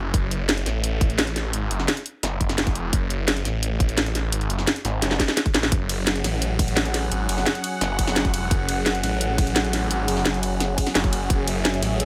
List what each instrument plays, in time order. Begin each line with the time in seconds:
Already playing: detuned saw bass F#1
0.14 detuned saw bass F#1, kick, closed hi-hat
0.31 closed hi-hat
0.49 snare, closed hi-hat
0.57 closed hi-hat
0.66 detuned saw bass A1, snare, closed hi-hat
0.84 closed hi-hat
1.01 kick, closed hi-hat
1.10 closed hi-hat
1.19 snare, closed hi-hat
1.27 closed hi-hat
1.36 snare, closed hi-hat
1.53 detuned saw bass G#1, closed hi-hat
1.71 detuned saw bass F#1, closed hi-hat
1.80 snare
1.88 snare, closed hi-hat
1.97 closed hi-hat
2.06 closed hi-hat
2.23 detuned saw bass F#1, snare, closed hi-hat
2.41 kick, closed hi-hat
2.49 snare, closed hi-hat
2.58 snare, closed hi-hat
2.67 kick, closed hi-hat
2.71 detuned saw bass F1
2.75 closed hi-hat
2.93 detuned saw bass F#1, kick, closed hi-hat
3.10 closed hi-hat
3.28 snare, closed hi-hat
3.37 closed hi-hat
3.45 detuned saw bass A1, snare, closed hi-hat
3.63 closed hi-hat
3.80 kick, closed hi-hat
3.89 closed hi-hat
3.98 snare, closed hi-hat
4.06 closed hi-hat
4.15 snare, closed hi-hat
4.32 detuned saw bass G#1, closed hi-hat
4.41 closed hi-hat
4.50 detuned saw bass F#1, closed hi-hat
4.59 snare
4.67 snare, closed hi-hat
4.76 closed hi-hat
4.85 detuned saw bass G#1, snare, closed hi-hat
5.02 detuned saw bass F#1, snare, closed hi-hat
5.11 snare
5.20 kick, snare, closed hi-hat
5.28 snare, closed hi-hat
5.37 snare, closed hi-hat
5.46 kick, closed hi-hat
5.54 detuned saw bass A1, snare, closed hi-hat
5.63 snare
5.72 detuned saw bass F#1, analog synth pad F#3 C#4 G#4 F#5, kick, closed hi-hat
5.89 closed hi-hat, ride
6.07 snare, closed hi-hat
6.16 closed hi-hat
6.24 detuned saw bass A1, snare, closed hi-hat, ride
6.42 closed hi-hat
6.59 kick, closed hi-hat, ride
6.68 closed hi-hat
6.77 snare, closed hi-hat
6.85 closed hi-hat
6.94 snare, closed hi-hat, ride
7.11 detuned saw bass G#1, closed hi-hat
7.29 detuned saw bass F#1, closed hi-hat, ride
7.38 snare
7.46 snare, closed hi-hat
7.55 closed hi-hat
7.64 closed hi-hat, ride
7.81 detuned saw bass F#1, snare, closed hi-hat
7.99 kick, closed hi-hat, ride
8.07 snare, closed hi-hat
8.16 snare, closed hi-hat
8.25 kick, closed hi-hat
8.29 detuned saw bass F1
8.34 closed hi-hat, ride
8.51 detuned saw bass F#1, kick, closed hi-hat
8.69 closed hi-hat, ride
8.86 snare, closed hi-hat
8.95 closed hi-hat
9.03 detuned saw bass A1, snare, closed hi-hat, ride
9.21 closed hi-hat
9.38 kick, closed hi-hat, ride
9.47 closed hi-hat
9.56 snare, closed hi-hat
9.65 closed hi-hat
9.73 snare, closed hi-hat, ride
9.91 detuned saw bass G#1, closed hi-hat
10.08 detuned saw bass F#1, closed hi-hat, ride
10.17 snare
10.25 detuned saw bass F#1, snare, closed hi-hat
10.34 closed hi-hat
10.43 closed hi-hat, ride
10.60 snare, closed hi-hat
10.78 kick, closed hi-hat, ride
10.87 snare, closed hi-hat
10.95 detuned saw bass F#1, snare, closed hi-hat
11.04 kick, closed hi-hat
11.13 closed hi-hat, ride
11.30 detuned saw bass F#1, analog synth pad E5, kick, closed hi-hat
11.48 closed hi-hat, ride
11.65 snare, closed hi-hat
11.74 closed hi-hat
11.82 detuned saw bass A1, snare, closed hi-hat, ride
12.00 closed hi-hat